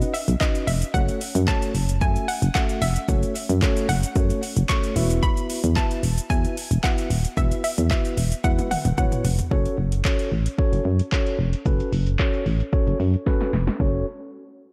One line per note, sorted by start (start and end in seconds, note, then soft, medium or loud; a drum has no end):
0.00 0.12 C#4 medium
0.00 0.12 D#4 medium
0.00 0.12 F#4 medium
0.00 0.12 B4 medium
0.00 0.12 D#5 medium
0.00 0.10 F#5 loud
0.00 closed hi-hat soft
0.00 shaker medium
0.14 0.41 E5 medium
0.14 open hi-hat medium
0.14 shaker medium
0.28 0.36 B1 loud
0.28 closed hi-hat medium
0.28 shaker medium
0.40 0.65 C#4 medium
0.40 0.65 D#4 medium
0.40 0.65 F#4 medium
0.40 0.65 B4 medium
0.40 0.68 D#5 medium
0.40 0.65 D#5 medium
0.40 kick loud
0.40 clap loud
0.40 shaker medium
0.55 closed hi-hat medium
0.55 shaker medium
0.67 0.84 F1 loud
0.67 0.79 E5 medium
0.67 open hi-hat medium
0.67 shaker medium
0.82 closed hi-hat medium
0.82 shaker medium
0.94 1.11 F#1 loud
0.94 1.19 A3 medium
0.94 1.19 C#4 medium
0.94 1.19 F#4 medium
0.94 1.19 A4 medium
0.94 1.19 C#5 medium
0.94 1.49 F#5 loud
0.94 kick loud
0.94 shaker medium
1.09 closed hi-hat medium
1.09 shaker medium
1.21 open hi-hat medium
1.21 shaker medium
1.35 1.51 F#2 loud
1.35 closed hi-hat medium
1.35 shaker medium
1.48 1.72 A3 medium
1.48 1.72 C#4 medium
1.48 1.72 F#4 medium
1.48 1.72 A4 medium
1.48 1.73 C#5 medium
1.48 2.03 A5 loud
1.48 kick loud
1.48 clap loud
1.48 shaker medium
1.62 closed hi-hat medium
1.62 shaker medium
1.75 2.03 F#1 medium
1.75 open hi-hat medium
1.75 shaker medium
1.89 closed hi-hat medium
1.89 shaker medium
2.01 2.18 F#2 loud
2.01 2.26 A3 medium
2.01 2.26 C#4 medium
2.01 2.26 F#4 medium
2.01 2.26 A4 medium
2.01 2.26 E5 medium
2.01 2.29 G#5 loud
2.01 kick loud
2.01 shaker medium
2.16 closed hi-hat medium
2.16 shaker soft
2.28 2.53 F#5 medium
2.28 open hi-hat medium
2.28 shaker medium
2.42 2.50 F#1 loud
2.42 closed hi-hat medium
2.42 shaker medium
2.55 2.79 A3 medium
2.55 2.80 C#4 medium
2.55 2.80 F#4 medium
2.55 2.80 A4 medium
2.55 2.80 E5 medium
2.55 2.83 F#5 loud
2.55 kick loud
2.55 clap loud
2.55 shaker medium
2.69 closed hi-hat medium
2.69 shaker medium
2.82 2.98 F1 medium
2.82 3.92 E5 loud
2.82 open hi-hat medium
2.82 shaker medium
2.96 closed hi-hat medium
2.96 shaker medium
3.08 3.25 F#1 loud
3.08 3.33 A3 medium
3.08 3.33 C#4 medium
3.08 3.33 F#4 medium
3.08 3.33 A4 medium
3.08 3.33 C#5 medium
3.08 kick loud
3.08 shaker medium
3.23 closed hi-hat medium
3.23 shaker medium
3.36 open hi-hat medium
3.36 shaker medium
3.49 3.66 F#2 loud
3.49 closed hi-hat medium
3.49 shaker medium
3.62 3.87 A3 loud
3.62 3.87 C#4 loud
3.62 3.87 F#4 loud
3.62 3.87 A4 loud
3.62 3.87 C#5 loud
3.62 kick loud
3.62 clap loud
3.62 shaker medium
3.77 closed hi-hat soft
3.77 shaker medium
3.89 4.05 F#1 medium
3.89 4.72 F#5 loud
3.89 open hi-hat medium
3.89 shaker medium
4.03 closed hi-hat medium
4.03 shaker medium
4.15 4.32 F#2 loud
4.15 4.40 A3 medium
4.15 4.40 C#4 medium
4.15 4.40 F#4 medium
4.15 4.40 A4 medium
4.15 4.40 C#5 loud
4.15 kick loud
4.15 shaker medium
4.30 closed hi-hat medium
4.30 shaker medium
4.43 open hi-hat medium
4.43 shaker medium
4.57 4.64 F#1 loud
4.57 closed hi-hat medium
4.57 shaker medium
4.69 4.94 A3 medium
4.69 4.94 C#4 medium
4.69 4.94 F#4 medium
4.69 4.94 A4 medium
4.69 4.94 C#5 medium
4.69 5.19 C#6 loud
4.69 kick loud
4.69 clap loud
4.69 shaker medium
4.84 closed hi-hat medium
4.84 shaker medium
4.96 5.28 E1 loud
4.96 5.61 B3 medium
4.96 5.61 E4 medium
4.96 5.61 F#4 medium
4.96 5.61 B4 medium
4.96 5.61 E5 medium
4.96 open hi-hat medium
4.96 shaker medium
5.10 closed hi-hat medium
5.10 shaker medium
5.23 5.78 B5 loud
5.23 kick loud
5.23 shaker medium
5.37 closed hi-hat medium
5.37 shaker medium
5.50 open hi-hat medium
5.50 shaker medium
5.64 5.80 E2 loud
5.64 closed hi-hat medium
5.64 shaker medium
5.76 6.01 B3 medium
5.76 6.01 E4 medium
5.76 6.01 F#4 medium
5.76 6.01 B4 medium
5.76 6.01 E5 medium
5.76 6.26 A5 loud
5.76 kick loud
5.76 clap loud
5.76 shaker medium
5.91 closed hi-hat medium
5.91 shaker medium
6.03 6.19 E1 loud
6.03 open hi-hat medium
6.03 shaker medium
6.18 closed hi-hat medium
6.18 shaker medium
6.30 6.46 E2 loud
6.30 6.54 B3 medium
6.30 6.54 E4 medium
6.30 6.55 F#4 medium
6.30 6.55 B4 medium
6.30 6.55 E5 medium
6.30 6.85 G#5 loud
6.30 kick loud
6.30 shaker medium
6.45 closed hi-hat soft
6.45 shaker soft
6.57 open hi-hat medium
6.57 shaker medium
6.71 6.79 E1 loud
6.71 closed hi-hat medium
6.71 shaker medium
6.83 7.08 B3 medium
6.83 7.08 E4 medium
6.83 7.08 F#4 medium
6.83 7.08 B4 medium
6.83 7.08 E5 loud
6.83 7.33 F#5 medium
6.83 kick loud
6.83 clap loud
6.83 shaker medium
6.98 closed hi-hat medium
6.98 shaker medium
7.10 7.27 D#1 loud
7.10 open hi-hat medium
7.10 shaker medium
7.25 closed hi-hat medium
7.25 shaker medium
7.37 7.53 E1 loud
7.37 7.62 B3 medium
7.37 7.62 E4 medium
7.37 7.62 F#4 medium
7.37 7.62 B4 medium
7.37 7.63 E5 loud
7.37 7.62 E5 medium
7.37 kick loud
7.37 shaker medium
7.51 closed hi-hat medium
7.51 shaker medium
7.64 7.90 E5 medium
7.64 open hi-hat medium
7.64 shaker medium
7.78 7.94 E2 loud
7.78 closed hi-hat medium
7.78 shaker medium
7.90 8.15 B3 medium
7.90 8.15 E4 medium
7.90 8.15 F#4 medium
7.90 8.15 B4 medium
7.90 8.46 E5 medium
7.90 8.15 E5 loud
7.90 kick loud
7.90 clap loud
7.90 shaker medium
8.05 closed hi-hat medium
8.05 shaker medium
8.17 8.34 E1 loud
8.17 open hi-hat medium
8.17 shaker medium
8.32 closed hi-hat medium
8.32 shaker medium
8.44 8.60 E2 medium
8.44 8.69 B3 medium
8.44 8.69 E4 medium
8.44 8.69 F#4 medium
8.44 8.69 B4 medium
8.44 8.69 E5 medium
8.44 8.69 F#5 medium
8.44 kick loud
8.44 high tom medium
8.44 shaker medium
8.59 closed hi-hat soft
8.59 high tom medium
8.59 shaker soft
8.71 8.77 E1 soft
8.71 8.83 F#5 medium
8.71 open hi-hat medium
8.71 mid tom medium
8.71 shaker medium
8.85 8.93 E1 medium
8.85 closed hi-hat medium
8.85 mid tom medium
8.85 shaker medium
8.98 9.07 E1 loud
8.98 9.22 B3 medium
8.98 9.22 E4 medium
8.98 9.22 F#4 medium
8.98 9.22 B4 medium
8.98 9.23 C#5 medium
8.98 9.36 F#5 medium
8.98 kick loud
8.98 mid tom medium
8.98 shaker medium
9.12 closed hi-hat medium
9.12 mid tom medium
9.12 shaker medium
9.25 9.41 F1 loud
9.25 floor tom loud
9.25 open hi-hat medium
9.25 shaker medium
9.39 closed hi-hat medium
9.39 floor tom loud
9.39 shaker medium
9.51 9.68 F#1 loud
9.51 9.76 C#4 loud
9.51 9.76 F#4 medium
9.51 9.76 A4 medium
9.51 9.76 C#5 loud
9.51 kick loud
9.65 closed hi-hat medium
9.78 10.03 F#1 medium
9.92 closed hi-hat medium
10.05 10.29 C#4 medium
10.05 10.30 F#4 medium
10.05 10.30 A4 medium
10.05 10.30 C#5 loud
10.05 kick loud
10.05 clap loud
10.19 closed hi-hat medium
10.32 10.48 A1 medium
10.46 closed hi-hat medium
10.58 10.83 C#4 medium
10.58 10.83 F#4 medium
10.58 10.83 A4 medium
10.58 10.83 C#5 loud
10.58 kick loud
10.73 10.80 F#1 loud
10.73 closed hi-hat soft
10.85 11.01 F#2 loud
10.99 closed hi-hat medium
11.12 11.37 C#4 loud
11.12 11.37 F#4 medium
11.12 11.37 A4 medium
11.12 11.37 C#5 loud
11.12 kick loud
11.12 clap loud
11.26 closed hi-hat medium
11.39 11.55 F1 medium
11.53 closed hi-hat medium
11.65 11.82 F#1 loud
11.65 11.90 C#4 medium
11.65 11.90 F#4 medium
11.65 11.90 A4 medium
11.65 11.90 B4 medium
11.65 kick loud
11.65 shaker medium
11.80 closed hi-hat medium
11.80 shaker medium
11.92 12.17 F#1 loud
11.92 open hi-hat medium
11.92 shaker medium
12.07 closed hi-hat medium
12.07 shaker medium
12.19 12.44 C#4 medium
12.19 12.44 F#4 medium
12.19 12.44 A4 medium
12.19 12.44 C#5 loud
12.19 kick loud
12.19 clap loud
12.19 shaker medium
12.34 closed hi-hat medium
12.34 shaker medium
12.46 12.62 A1 medium
12.46 open hi-hat medium
12.46 shaker medium
12.60 closed hi-hat medium
12.60 shaker medium
12.73 12.97 C#4 medium
12.73 12.97 F#4 medium
12.73 12.97 A4 medium
12.73 12.98 C#5 loud
12.73 kick loud
12.73 shaker medium
12.87 12.95 F#1 loud
12.87 closed hi-hat soft
12.87 shaker soft
13.00 13.16 F#2 loud
13.00 open hi-hat medium
13.00 shaker medium
13.14 closed hi-hat medium
13.14 shaker medium
13.26 13.51 C#4 loud
13.26 13.51 F#4 loud
13.26 13.51 A4 medium
13.26 13.51 B4 loud
13.26 kick loud
13.26 snare medium
13.26 shaker medium
13.41 snare medium
13.41 closed hi-hat medium
13.41 shaker medium
13.53 13.69 F1 medium
13.53 snare medium
13.53 open hi-hat medium
13.53 shaker medium
13.67 snare medium
13.67 closed hi-hat medium
13.67 shaker medium
13.80 14.05 F#1 loud
13.80 14.05 C#4 medium
13.80 14.05 F#4 medium
13.80 14.05 A4 medium
13.80 14.05 C#5 medium
13.80 kick loud
13.80 open hi-hat medium